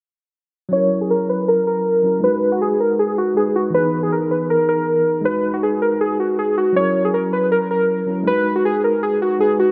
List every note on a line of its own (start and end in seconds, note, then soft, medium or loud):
0.69 2.00 F#3 medium
0.69 2.01 C#4 medium
0.69 0.99 C#5 loud
0.74 2.03 E4 medium
0.74 2.04 A#4 medium
1.01 1.10 G#4 medium
1.10 1.28 A#4 medium
1.29 1.46 B4 medium
1.48 1.65 A#4 medium
1.67 2.20 A#4 medium
2.03 2.23 F#3 medium
2.03 2.23 C#4 soft
2.03 2.24 E4 soft
2.03 2.25 A#4 medium
2.20 3.33 G#3 medium
2.20 3.34 D#4 medium
2.20 2.50 B4 loud
2.25 3.35 F#4 medium
2.25 3.37 B4 medium
2.52 2.60 F#4 medium
2.61 2.78 G#4 medium
2.80 2.97 A#4 medium
2.99 3.16 G#4 medium
3.18 3.35 F#4 medium
3.35 3.74 G#3 soft
3.35 3.74 D#4 soft
3.35 3.75 F#4 soft
3.35 3.54 G#4 medium
3.39 3.76 B4 medium
3.56 3.73 F#4 medium
3.70 5.20 E3 medium
3.70 5.22 B3 medium
3.74 5.23 D#4 medium
3.74 5.24 G#4 medium
3.74 4.01 B4 loud
4.03 4.11 G#4 medium
4.12 4.29 A#4 medium
4.31 4.48 B4 medium
4.50 4.67 A#4 medium
4.69 5.22 A#4 medium
5.21 6.71 G#3 medium
5.21 6.73 D#4 medium
5.21 5.52 B4 loud
5.27 6.74 F#4 medium
5.27 6.75 B4 medium
5.54 5.62 F#4 medium
5.63 5.80 G#4 medium
5.82 5.99 A#4 medium
6.01 6.18 G#4 medium
6.20 6.37 F#4 medium
6.39 6.56 G#4 medium
6.58 6.75 F#4 medium
6.73 8.04 F#3 medium
6.73 8.05 C#4 medium
6.73 7.03 C#5 loud
6.78 8.07 E4 medium
6.78 8.08 A#4 medium
7.05 7.13 G#4 medium
7.14 7.31 A#4 medium
7.33 7.50 B4 medium
7.52 7.69 A#4 medium
7.71 8.24 A#4 medium
8.06 8.26 F#3 medium
8.06 8.27 C#4 soft
8.06 8.28 E4 soft
8.06 8.28 A#4 medium
8.24 9.36 G#3 medium
8.24 9.38 D#4 medium
8.24 8.54 B4 loud
8.29 9.39 F#4 medium
8.29 9.40 B4 medium
8.56 8.64 F#4 medium
8.65 8.82 G#4 medium
8.84 9.01 A#4 medium
9.03 9.20 G#4 medium
9.22 9.39 F#4 medium
9.39 9.72 G#3 soft
9.39 9.72 D#4 soft
9.39 9.72 F#4 soft
9.39 9.58 G#4 medium
9.39 9.72 B4 medium
9.59 9.72 F#4 medium